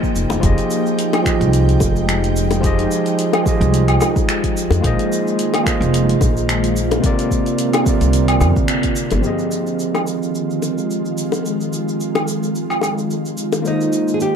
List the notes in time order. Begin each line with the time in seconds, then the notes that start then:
Already playing: F3 A#3 D#4 F4 G#4 C5 D#5 G5
0.03 kick, cabasa
0.16 F1, cabasa
0.30 F1, high bongo, cabasa
0.40 F1 F3 G#3 F4 G4 G5, kick, closed hi-hat, cabasa
0.45 G#4 D#5
0.58 closed hi-hat, cabasa
0.71 cabasa
0.86 cabasa
0.99 closed hi-hat, cabasa
1.13 closed hi-hat, high bongo, cabasa, low woodblock
1.23 F3 F4 G4, finger snap, kick, cabasa
1.27 G#4 D#5
1.41 C2, closed hi-hat, cabasa
1.53 closed hi-hat, cabasa
1.69 closed hi-hat, cabasa
1.80 F1, kick, high bongo, cabasa
1.96 cabasa
2.09 finger snap, closed hi-hat, cabasa
2.24 closed hi-hat, cabasa
2.36 cabasa
2.51 closed hi-hat, high bongo, cabasa
2.60 F3 F4 G4, kick, closed hi-hat, cabasa
2.65 G#4 D#5
2.79 closed hi-hat, cabasa
2.91 cabasa
3.06 closed hi-hat, cabasa
3.19 closed hi-hat, cabasa
3.33 closed hi-hat, high bongo, cabasa, low woodblock
3.43 F3 F4 G4, kick, cabasa
3.47 G#4 D#5
3.61 C2, closed hi-hat, cabasa
3.74 closed hi-hat, cabasa
3.88 closed hi-hat, cabasa, low woodblock
4.01 high bongo, cabasa, low woodblock
4.16 kick, cabasa
4.29 finger snap, closed hi-hat, cabasa
4.44 kick, closed hi-hat, cabasa
4.57 cabasa
4.71 F2, closed hi-hat, high bongo, cabasa
4.81 A#1 D#3 A#3 F4 G#4, kick, closed hi-hat, cabasa
4.86 C5 D#5
4.99 closed hi-hat, cabasa
5.12 cabasa
5.27 cabasa
5.39 closed hi-hat, cabasa
5.54 closed hi-hat, high bongo, cabasa, low woodblock
5.63 A#3 F4 G#4, finger snap, kick
5.67 C5 D#5, cabasa
5.81 F1, closed hi-hat, cabasa
5.94 closed hi-hat, cabasa
6.09 closed hi-hat, cabasa
6.21 A#1, kick, high bongo, cabasa
6.37 cabasa
6.49 finger snap, closed hi-hat, cabasa
6.64 closed hi-hat, cabasa
6.76 cabasa
6.91 closed hi-hat, high bongo, cabasa
7.00 C3 C4 F4, kick, closed hi-hat, cabasa
7.05 D3 A#4 D5
7.19 closed hi-hat, cabasa
7.31 kick, cabasa
7.46 closed hi-hat, cabasa
7.58 closed hi-hat, cabasa
7.73 closed hi-hat, high bongo, cabasa, low woodblock
7.83 C3 C4 F4, kick, cabasa
7.88 A#4 D5
8.01 C2, closed hi-hat, cabasa
8.13 closed hi-hat, cabasa
8.28 closed hi-hat, cabasa, low woodblock
8.41 F2, high bongo, cabasa, low woodblock
8.56 kick, cabasa
8.68 finger snap, closed hi-hat, cabasa
8.83 kick, closed hi-hat, cabasa
8.96 cabasa
9.11 G1, closed hi-hat, high bongo, cabasa
9.21 D#3 F3 G#3 C4 F4 G4, cabasa
9.25 G#4 D#5
9.39 cabasa
9.51 cabasa
9.67 cabasa
9.79 cabasa
9.95 high bongo, cabasa, low woodblock
10.07 cabasa
10.23 cabasa
10.35 cabasa
10.50 cabasa
10.62 high bongo, cabasa
10.78 cabasa
10.91 cabasa
11.05 cabasa
11.18 cabasa
11.32 high bongo, cabasa
11.46 cabasa
11.61 cabasa
11.73 cabasa
11.88 cabasa
12.00 cabasa
12.15 high bongo, cabasa, low woodblock
12.28 cabasa
12.43 cabasa
12.55 cabasa
12.70 cabasa, low woodblock
12.81 high bongo, cabasa, low woodblock
12.98 cabasa
13.11 cabasa
13.25 cabasa
13.38 cabasa
13.52 high bongo, cabasa
13.62 G#3 A#3 F4, cabasa
13.66 D#4 C5 D#5
13.81 cabasa
13.93 cabasa
14.08 cabasa
14.14 G#4
14.20 G4, cabasa